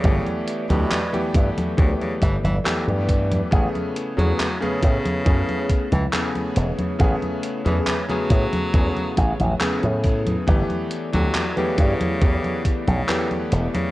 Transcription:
<<
  \new Staff \with { instrumentName = "Ambient pad" } { \time 4/4 \key a \major \tempo 4 = 69 << { <a a' d'' e''>1 | <a e' gis' cis''>1~ | <a e' gis' cis''>1 | <a e' b' d''>1 | } \\ { b'1~ | b'1~ | b'1 | a'1 | } >> }
  \new Staff \with { instrumentName = "Electric grand piano" } { \time 4/4 \key a \major <e a b g'>8. <e a b g'>16 r16 <e a b g'>8. <e a b g'>8. r16 <e a b g'>4 | <cis a b gis'>8. <cis a b gis'>16 r16 <cis a b gis'>8. <cis a b gis'>8. r16 <cis a b gis'>4 | <cis a b gis'>8. <cis a b gis'>16 r16 <cis a b gis'>8. <cis a b gis'>8. r16 <cis a b gis'>4 | <e a b g'>8. <e a b g'>16 r16 <e a b g'>8. <e a b g'>8. r16 <e a b g'>4 | }
  \new Staff \with { instrumentName = "Tenor saxophone" } { \clef bass \time 4/4 \key a \major cis16 r8 b,8 r8. cis16 cis16 e16 e16 r4 | r8. fis8 cis4. e16 e16 r8. | r8. e16 e16 fis4. r4 r16 | r8. fis8 cis4. cis8 r8 cis16 | }
  \new Staff \with { instrumentName = "Slap bass" } { \clef bass \time 4/4 \key a \major g,,16 r8 d,16 r8 g,16 r16 d,16 r16 g,,16 g,,16 r16 g,8 r16 | a,,16 r8 e,16 r8 a,16 r16 fis,16 r8 cis,16 r8 e,,16 r16 | a,,16 r8 e,16 r8 a,16 r16 e,16 r16 a,,16 a,,16 r16 a,8 r16 | g,,16 r8 d,16 r8 g,16 r16 e,16 r8 b,,16 r8 e,,16 r16 | }
  \new DrumStaff \with { instrumentName = "Drums" } \drummode { \time 4/4 <cgho hh bd>16 <cgho hh>16 hh16 <cgho hh>16 <hc cgho hh>16 <cgho hh>16 <hh bd>16 <cgho hh>16 <cgho hh bd>16 <cgho hh>16 <hh bd>16 <cgho hh>16 <hc cgho hh>16 <cgho hh>16 <hh bd>16 <cgho hh>16 | <cgho hh bd>16 <cgho hh>16 hh16 <cgho hh>16 <hc cgho hh>16 <cgho hh>16 <hh bd>16 <cgho hh>16 <cgho hh bd>16 <cgho hh>16 <hh bd>16 <cgho hh>16 <hc cgho hh>16 <cgho hh>16 hh16 <cgho hh>16 | <cgho hh bd>16 <cgho hh>16 hh16 <cgho hh>16 <hc cgho hh>16 <cgho hh>16 <hh bd>16 <cgho hh>16 <cgho hh bd>16 <cgho hh>16 <hh bd>16 <cgho hh>16 <hc cgho hh>16 <cgho hh>16 <hh bd>16 <cgho hh>16 | <cgho hh bd>16 <cgho hh>16 hh16 <cgho hh>16 <hc cgho hh>16 <cgho hh>16 <hh bd>16 <cgho hh>16 <cgho hh bd>16 <cgho hh>16 <hh bd>16 <cgho hh>16 <hc cgho hh>16 <cgho hh>16 hh16 <cgho hh>16 | }
>>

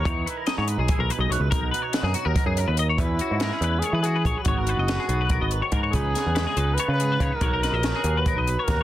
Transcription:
<<
  \new Staff \with { instrumentName = "Clean electric guitar" } { \time 7/8 \key e \lydian \tempo 4 = 142 cis''8 b'16 ais'16 dis''16 cis''16 b'16 gis'8 ais'16 b'16 dis''16 cis''16 b'16 | ais'8 b'16 cis''16 b'16 gis'16 fis'16 ais'8 gis'16 ais'16 b'16 dis''16 cis''16 | b'8 fis'8 ais'16 gis'16 b'8 cis''16 b'16 fis'16 b'16 cis''16 b'16 | cis''16 ais'16 b'16 dis''16 b'16 gis'8 b'16 ais'16 dis''16 b'16 cis''16 ais'16 cis''16 |
b'8 gis'8 b'16 gis'16 b'8 cis''16 b'16 gis'16 b'16 cis''16 b'16 | cis''16 ais'16 b'16 dis''16 b'16 gis'8 b'16 ais'16 dis''16 b'16 cis''16 ais'16 r16 | }
  \new Staff \with { instrumentName = "Trumpet" } { \time 7/8 \key e \lydian r2. r8 | r2. r8 | e'2 gis'8 gis'4 | fis'2. r8 |
gis'2 b'8 b'4 | ais'2 b'4 ais'8 | }
  \new Staff \with { instrumentName = "Clean electric guitar" } { \time 7/8 \key e \lydian << { dis'8 e'8 dis'4 e'4 b'8 | dis'8 fis'8 dis'2~ dis'8 | cis'8 cis'8 b16 cis'16 cis'2 | <gis b>8 b8 b8 b8 b4 fis'8 |
dis'8 b8 dis'8 dis'8 b4 dis'8 | <fis dis' fis'>8 dis'8 dis'16 fis'16 fis'8 dis'4 fis'8 | } \\ { e4. gis4 b,4 | b,4. fis8 b,8 cis8 dis8 | e4 gis4 dis8 e8 fis8 | gis,4 gis4. dis4 |
cis4 gis4. gis,4 | b,4 fis4. b,4 | } >> }
  \new Staff \with { instrumentName = "Picked electric bass" } { \clef bass \time 7/8 \key e \lydian e,8 r8. gis,8 b,,16 r16 b,,16 r16 b,,16 b,,16 cis,16 | b,,8 r8. fis,16 r16 dis,16 r16 fis,8 dis,8. | e,8 r16 gis,8 r16 e,8 r16 e8. ais,,16 r16 | gis,,8. fis,,8 r16 b,,8. gis,,8 r16 gis,8 |
cis,8 r16 e,8 r16 cis,8 r16 cis8. cis16 r16 | b,,8. ais,,8 r16 dis,8. b,,8 r16 dis,8 | }
  \new DrumStaff \with { instrumentName = "Drums" } \drummode { \time 7/8 <hh bd>8 hh8 <hh sn>8 hh8 <hh bd>8 hh8 hh8 | <hh bd>8 hh8 <hh sn>8 hh8 <hh bd>8 hh8 hh8 | <hh bd>8 hh8 <hh sn>8 hh8 hh8 hh8 <hh bd>8 | <hh bd>8 hh8 <hh sn>8 hh8 <hh bd>8 hh8 <hh bd>8 |
<hh bd>8 <hh sn>8 <hh sn>8 hh8 hh8 hh8 <hh bd>8 | <hh bd>8 <hh sn>8 <hh sn>8 hh8 <hh bd>8 hh8 <hh bd sn>8 | }
>>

